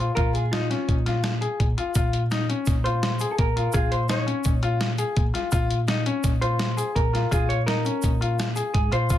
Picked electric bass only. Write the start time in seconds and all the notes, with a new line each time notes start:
0.17 A#2
0.89 A#2
1.60 A#2
1.96 A#2
2.67 A#2
3.39 A#2
3.74 A#2
4.45 A#2
5.17 A#2
5.52 A#2
6.24 A#2
6.96 A#2
7.32 A#2
8.04 A#2
8.75 G#2
8.92 A#2
9.10 A#2